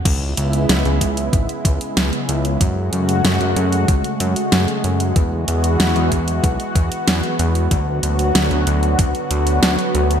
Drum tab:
CC |x---------------|----------------|----------------|----------------|
HH |x-xxxxxxxxxxxxxx|x-xxxxxxxxxxxxxx|x-xxxxxxxxxxxxxx|x-xxxxxxxxxxxxxx|
SD |----o-------o---|----o-------o---|----o-------o---|----o-------o---|
BD |o-----o-o-o-----|o-------o-------|o-----o-o-o-----|o-------o-------|